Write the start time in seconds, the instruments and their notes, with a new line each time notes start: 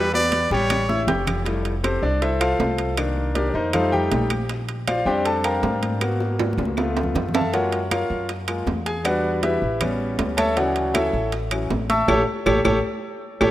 Already playing: upright bass E2, trumpet B4
0.13 grand piano B3 B4 B5, trumpet D5, high bongo, high conga
0.32 high conga, high timbale, low timbale
0.51 upright bass A1, grand piano G3 G4 G5, trumpet C#5, low bongo, high conga
0.70 low bongo, high conga, high timbale, claves
0.89 grand piano E4 E5 E6, low bongo, high conga
1.07 upright bass F1, grand piano G4 G5 G6, low bongo, low conga, high timbale, low timbale
1.27 low bongo, low conga, high timbale, claves
1.45 grand piano G3 A3 E4, high bongo, high conga, high timbale
1.64 high bongo, high conga, high timbale
1.84 grand piano C4 G4 A4 C5, high bongo, high conga, high timbale, low timbale, claves
2.02 upright bass C2, grand piano D4 D5, high conga
2.22 grand piano E4 A4 C5 E5, high bongo, high conga, high timbale
2.41 grand piano F4 A4 C5 F5, high conga, high timbale, claves
2.59 upright bass C2, high bongo, low bongo, high conga, low timbale
2.78 high bongo, high timbale
2.97 grand piano D#3 A#3 D4, high bongo, high conga, high timbale, claves
3.17 high bongo, high conga
3.35 grand piano D4 G4 A#4 D5, high bongo, high conga, high timbale, low timbale
3.50 upright bass F2, grand piano D5
3.55 grand piano D#4 A#4 C5 D#5, high conga
3.73 grand piano G3 A3 D#4 F4 A4 C5 F5, high bongo, high conga, low conga, high timbale, claves
3.92 grand piano G4 G5, high bongo, high conga, low conga
4.11 upright bass A#1, high bongo, low bongo, high conga, high timbale, low timbale
4.30 high bongo, high conga, high timbale, claves
4.49 high bongo, high conga, high timbale
4.69 high bongo, high conga, high timbale
4.88 grand piano F4 C5 D5 F5, high bongo, high conga, high timbale, low timbale, claves
5.06 upright bass F2, grand piano G3 C4 D4 G4 C5 D5 G5, high conga
5.25 grand piano A4 A5, high bongo, high conga, high timbale
5.44 grand piano A#4 F5 G5 A#5, high bongo, high conga, high timbale, claves
5.63 upright bass G#2, high bongo, low bongo, high conga, low timbale
5.83 high bongo, high conga, high timbale
6.01 grand piano A#3 B3 F#4, high bongo, high conga, high timbale, claves
6.20 high bongo, high conga
6.39 low bongo, high conga, high timbale
6.53 high conga
6.58 upright bass C#2, low bongo, high timbale
6.65 high conga
6.77 grand piano A3 B3 F4, low bongo, low timbale, claves
6.97 low bongo, low timbale
7.03 low conga
7.15 upright bass F#2, low bongo, low conga, low timbale
7.29 low conga
7.34 grand piano A4 E5 F5 A5, low bongo, low timbale, claves
7.41 low conga
7.53 grand piano G#3 A#3 F4 F#4 A#4 C#5 F#5, high bongo, high conga, high timbale
7.72 high bongo, high conga, high timbale
7.91 grand piano F4 A#4 C#5 F5, high bongo, high conga, high timbale, low timbale, claves
8.10 upright bass F#2, high conga
8.29 high bongo, high conga, high timbale
8.47 grand piano G#3 A#3 F4, high bongo, high conga, high timbale, claves
8.67 upright bass E2, high bongo, low bongo, high conga, low timbale
8.86 grand piano G#4 G#5, high bongo, high timbale
9.04 grand piano G3 D4 F#4 B4 D5 F#5, high bongo, high conga, high timbale, claves
9.24 high bongo, high conga
9.43 grand piano E4 G4 B4 E5, high bongo, high conga, high timbale, low timbale
9.62 upright bass A1, high conga
9.81 grand piano G3 B3 C#4, high bongo, high conga, low conga, high timbale, claves
10.00 high bongo, high conga
10.19 upright bass D2, high bongo, low bongo, high conga, high timbale, low timbale
10.37 grand piano A4 C#5 E5 A5, high bongo, high conga, high timbale, claves
10.56 grand piano C#3 E3 F#3 F#4 C#5 D5 F#5, high bongo, high conga, high timbale
10.75 high bongo, high conga, high timbale
10.94 grand piano E4 A4 C#5 E5, high bongo, high conga, high timbale, low timbale, claves
11.13 upright bass A1, high conga
11.32 high bongo, high conga, high timbale
11.51 grand piano E3 F#3 C#4, high bongo, high conga, high timbale, claves
11.70 upright bass A1, high bongo, low bongo, high conga, low timbale
11.89 grand piano E5 A5 C#6 E6, high bongo, high conga, high timbale
12.08 upright bass A1, grand piano G4 A4 C#5, high bongo, high conga, high timbale, claves
12.46 upright bass A1, grand piano G4 A4 C#5, high bongo, high conga, high timbale, claves
12.65 upright bass A1, grand piano G4 A4 C#5, high bongo, high conga, high timbale, claves
13.41 upright bass A1, grand piano G4 A4 C#5, high bongo, high conga, high timbale, claves